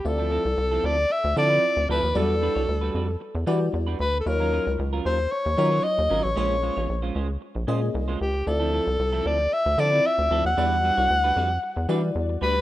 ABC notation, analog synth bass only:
X:1
M:4/4
L:1/16
Q:1/4=114
K:Ephr
V:1 name="Analog synth bass" clef=bass
D,,3 C,, C,,2 D,,2 z D,, D,2 z D,, D,, _E,, | E,,3 C,, D,,2 F,,2 z E,, E,2 E,,2 D,,2 | _E,,3 _D,, D,,2 E,,2 z E,, _E,2 z E,, ^G,,, A,,, | _B,,,3 A,,, B,,,2 _D,,2 z B,,, _B,,2 C,,2 D,,2 |
D,,3 C,, C,,2 D,,2 z D,, D,2 z D,, D,, _E,, | E,,3 C,, D,,2 F,,2 z E,, E,2 E,,2 D,,2 |]